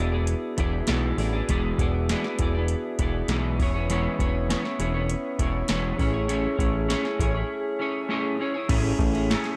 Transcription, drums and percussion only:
0.27 closed hi-hat
0.58 kick, closed hi-hat
0.87 snare, closed hi-hat
1.18 open hi-hat
1.49 kick, closed hi-hat
1.78 kick, closed hi-hat
2.09 snare, closed hi-hat
2.24 snare
2.39 kick, closed hi-hat
2.68 closed hi-hat
2.99 kick, closed hi-hat
3.28 snare, closed hi-hat
3.60 kick, open hi-hat
3.90 closed hi-hat
4.19 kick, closed hi-hat
4.50 snare, closed hi-hat
4.65 snare
4.80 closed hi-hat
5.10 closed hi-hat
5.39 kick, closed hi-hat
5.68 snare, closed hi-hat
5.99 kick, open hi-hat
6.29 closed hi-hat
6.59 kick, closed hi-hat
6.90 snare, closed hi-hat
7.05 snare
7.20 kick, closed hi-hat
8.69 kick, crash, ride
8.99 kick, ride
9.15 ride
9.31 snare, ride
9.44 snare, ride

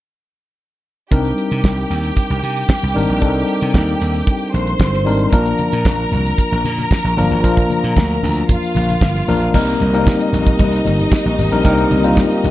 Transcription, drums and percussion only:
1.12 kick, closed hi-hat
1.25 closed hi-hat
1.38 closed hi-hat
1.51 closed hi-hat
1.64 kick, snare
1.91 closed hi-hat
2.04 closed hi-hat
2.17 kick, closed hi-hat
2.30 closed hi-hat
2.44 closed hi-hat
2.56 closed hi-hat
2.69 kick, snare
2.96 open hi-hat
3.09 closed hi-hat
3.22 kick, closed hi-hat
3.48 closed hi-hat
3.61 closed hi-hat
3.74 kick, snare
4.01 closed hi-hat
4.14 closed hi-hat
4.27 kick, closed hi-hat
4.54 closed hi-hat
4.67 closed hi-hat
4.80 kick, snare
4.94 snare
5.07 open hi-hat
5.19 closed hi-hat
5.33 kick, closed hi-hat
5.46 closed hi-hat
5.59 closed hi-hat, muted conga, high conga
5.72 closed hi-hat
5.85 kick, snare, muted conga, high conga
5.99 closed hi-hat
6.12 closed hi-hat, muted conga, high conga, low conga
6.26 closed hi-hat
6.38 kick, closed hi-hat, muted conga
6.52 closed hi-hat
6.64 closed hi-hat, high conga
6.78 closed hi-hat, high conga
6.91 kick, snare
7.06 snare
7.17 open hi-hat, muted conga, low conga
7.31 closed hi-hat
7.43 kick, closed hi-hat, muted conga
7.57 kick, closed hi-hat
7.70 closed hi-hat, high conga
7.84 closed hi-hat
7.97 kick, snare, muted conga, high conga
8.23 open hi-hat, muted conga, high conga, low conga
8.36 closed hi-hat
8.49 kick, closed hi-hat, muted conga, low conga
8.63 closed hi-hat
8.75 closed hi-hat, muted conga, high conga
8.89 closed hi-hat, high conga
9.01 kick, snare
9.16 snare
9.28 open hi-hat, muted conga, low conga
9.41 closed hi-hat
9.54 kick, crash, muted conga
9.68 closed hi-hat
9.80 closed hi-hat, high conga
9.94 closed hi-hat
10.07 kick, snare, tambourine, high conga
10.21 closed hi-hat
10.33 closed hi-hat, muted conga, high conga, low conga
10.46 kick, closed hi-hat
10.59 kick, closed hi-hat, muted conga, low conga
10.73 closed hi-hat
10.85 closed hi-hat, muted conga, high conga
10.99 closed hi-hat, high conga
11.12 kick, snare, tambourine
11.25 closed hi-hat
11.38 open hi-hat, muted conga, low conga
11.52 closed hi-hat
11.64 kick, closed hi-hat, muted conga
11.78 closed hi-hat
11.91 closed hi-hat, muted conga, high conga
12.04 closed hi-hat
12.17 kick, snare, tambourine, muted conga, high conga
12.31 closed hi-hat
12.44 closed hi-hat, high conga, low conga

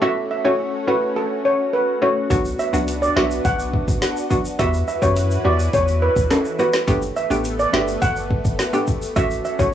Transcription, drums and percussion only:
2.30 kick, closed hi-hat, shaker
2.45 shaker
2.59 shaker
2.74 shaker
2.88 closed hi-hat, shaker
3.03 shaker
3.17 snare
3.31 shaker
3.45 kick, closed hi-hat, shaker
3.59 shaker
3.73 kick
3.88 kick, shaker
4.02 snare, closed hi-hat, shaker
4.17 shaker
4.31 kick, shaker
4.45 shaker
4.59 kick, closed hi-hat, shaker
4.74 shaker
4.88 shaker
5.02 kick, shaker
5.16 closed hi-hat, shaker
5.31 shaker
5.59 shaker
5.73 kick, closed hi-hat, shaker
5.88 shaker
6.16 kick, shaker
6.31 snare, closed hi-hat, high timbale, shaker
6.45 shaker
6.59 shaker
6.73 snare, shaker
6.88 kick, closed hi-hat, shaker
7.02 shaker
7.16 shaker
7.31 shaker
7.44 closed hi-hat, shaker
7.59 shaker
7.74 snare
7.88 shaker
8.02 kick, closed hi-hat, shaker
8.16 shaker
8.31 kick
8.45 kick, shaker
8.59 snare, closed hi-hat, shaker
8.73 shaker
8.87 kick, shaker
9.02 shaker
9.16 kick, closed hi-hat, shaker
9.31 shaker
9.45 shaker
9.59 kick, shaker

